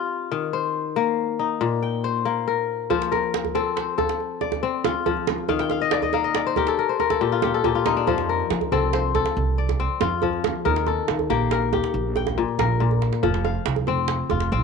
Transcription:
Already playing: kora C4 F4 G4 D5
0.32 kora D#3
0.53 kora C5
0.96 kora A#3
1.39 kora D#4
1.61 kora A#2
1.82 kora G5
2.04 kora C5
2.25 kora A#3
2.48 kora A#4
2.90 kora F3 C5, djembe bass
3.02 djembe slap
3.12 kora A#4, djembe tone
3.23 djembe slap
3.34 djembe slap
3.45 djembe bass
3.55 kora C4 A4, djembe tone
3.77 kora C5, djembe slap
3.98 kora A4, djembe tone, djembe bass
4.09 djembe slap
4.20 djembe slap
4.41 kora D5, djembe tone
4.52 djembe slap, djembe bass
4.63 kora C4, djembe slap
4.84 kora F4, djembe slap, djembe tone
5.06 kora F3, djembe bass
5.17 djembe slap
5.27 djembe slap, djembe tone
5.38 djembe slap
5.49 kora D#3 F5, djembe bass
5.59 kora G5, djembe slap
5.70 kora F5, djembe tone
5.80 kora D#5, djembe slap
5.91 kora D5, djembe slap
6.02 kora D#5, djembe bass
6.13 kora A#3 F5, djembe tone
6.24 kora D#5
6.35 kora D5, djembe slap
6.46 kora C5
6.56 kora G4 A#4, djembe tone, djembe bass
6.67 kora A4, djembe slap
6.78 kora A#4, djembe slap
6.89 kora C5
7.00 kora A#4, djembe tone
7.10 kora A4, djembe slap, djembe bass
7.21 kora A#2 G4, djembe slap
7.32 kora F4
7.42 kora G4, djembe slap, djembe tone
7.54 kora A4
7.64 kora A#2 G4, djembe bass
7.75 kora F4, djembe slap
7.86 kora D#4, djembe slap, djembe tone
7.96 kora D4, djembe slap
8.07 upright bass F2, kora F3 C5, djembe bass
8.18 djembe slap
8.29 kora A#4
8.40 djembe slap
8.50 upright bass F3, djembe slap
8.61 djembe bass
8.72 upright bass C2, kora C4 A4, djembe tone
8.93 kora C5, djembe slap
9.15 kora A4, djembe tone, djembe bass
9.26 djembe slap
9.36 upright bass C2, djembe slap
9.58 kora D5
9.69 djembe slap, djembe bass
9.79 kora C4, djembe slap
10.01 upright bass F2, kora F4, djembe slap, djembe tone
10.22 kora F3, djembe bass
10.33 djembe slap
10.44 djembe slap, djembe tone
10.55 djembe slap
10.65 upright bass D#2, kora D#3 A#4, djembe bass
10.76 djembe slap
10.87 kora A4, djembe slap, djembe tone
11.08 upright bass D#3, djembe slap
11.19 djembe bass
11.30 upright bass A#1, kora A#3 G4, djembe slap, djembe tone
11.41 djembe slap
11.51 kora A#4, djembe slap
11.62 djembe slap
11.73 kora G4, djembe tone, djembe bass
11.84 djembe slap
11.94 upright bass A#1
12.16 kora G5, djembe tone
12.27 djembe slap, djembe bass
12.38 kora A#2
12.48 djembe slap
12.59 upright bass A#1, kora A#4, djembe slap, djembe tone
12.80 kora A#2, djembe bass
12.91 djembe bass
13.02 djembe slap
13.13 djembe slap
13.23 upright bass F1, kora F3, djembe bass
13.34 djembe slap
13.45 kora F5, djembe slap, djembe tone
13.55 djembe slap
13.66 upright bass C2, djembe slap
13.76 djembe bass
13.87 upright bass F1, kora C4, djembe tone
13.98 djembe slap
14.08 djembe slap
14.30 upright bass F1, kora F4, djembe tone, djembe bass
14.40 djembe slap
14.52 upright bass C2, kora C4

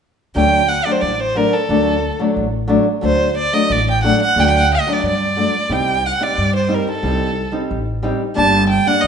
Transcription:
0.35 upright bass D2, nylon-string guitar F#3 A3 D4, violin G5
0.68 violin F#5
0.85 nylon-string guitar F#3 A3 D4, violin D5
0.92 violin C5
1.01 upright bass A1, violin D5
1.14 violin D5
1.20 violin C5
1.35 nylon-string guitar F#3 A3 D4, violin A#4
1.53 violin A4
1.69 upright bass D2, nylon-string guitar F#3 A3 D4
2.19 nylon-string guitar F#3 A3 D4
2.37 upright bass A1
2.68 nylon-string guitar F#3 A3 D4
3.01 upright bass D2, nylon-string guitar F#3 A3 D4, violin C5
3.37 violin D5
3.53 nylon-string guitar F#3 A3 D4, violin D#5
3.70 upright bass A1, violin D5
3.91 violin G5
4.03 nylon-string guitar F#3 A3 D4, violin F#5
4.22 violin F#5
4.36 upright bass D2, nylon-string guitar F#3 A3 D4, violin G5
4.41 violin F#5
4.47 violin G5
4.58 violin F#5
4.75 violin D#5
4.87 nylon-string guitar F#3 A3 D4
4.93 violin D5
5.03 upright bass G2
5.08 violin D5
5.36 nylon-string guitar F#3 A3 D4
5.69 upright bass C2, nylon-string guitar G3 C4 D#4, violin G5
6.06 violin F#5
6.20 nylon-string guitar G3 C4 D#4, violin D5
6.38 upright bass G2
6.56 violin C5
6.68 nylon-string guitar G3 C4 D#4
6.74 violin A#4
6.91 violin A4
7.03 upright bass C2, nylon-string guitar G3 C4 D#4
7.52 nylon-string guitar G3 C4 D#4
7.71 upright bass A1
8.03 nylon-string guitar G3 C4 D#4
8.35 upright bass G1, nylon-string guitar G3 A#3 D4, violin A5
8.70 violin G5
8.86 nylon-string guitar G3 A#3 D4, violin F#5
9.01 upright bass D2, violin D#5

